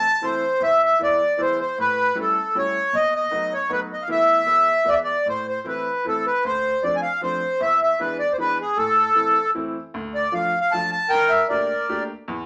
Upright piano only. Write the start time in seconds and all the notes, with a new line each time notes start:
0.21 E3 A3 C4 E4
0.60 E2
0.99 E3 G#3 B3 E4
1.37 E3 G#3 B3 E4
1.78 A2
2.15 G3 A3 C#4 E4
2.55 G3 A3 C#4 E4
2.93 B2
3.31 F#3 A3 B3 D#4
3.69 F#3 A3 B3 D#4
4.08 E3 A3 B3 E4
4.46 E3 G#3 B3 E4
4.85 E3 G#3 B3 E4
5.26 A2
5.64 E3 A3 C4 E4
6.05 E3 A3 C4 E4
6.45 D2
6.83 F3 A3 C4 D4
7.21 F3 A3 C4 D4
7.60 E2
8.00 E3 G#3 B3 D4
8.38 E3 G#3 B3 D4
8.77 A2
9.15 E3 A3 C4 E4
9.54 E3 A3 C4 E4
9.94 D2
10.32 F3 A3 D4 F4
10.73 F3 A3 D4 F4
11.13 G2
11.49 A3 A#3 D4 G4
11.89 A3 A#3 D4 G4
12.28 E2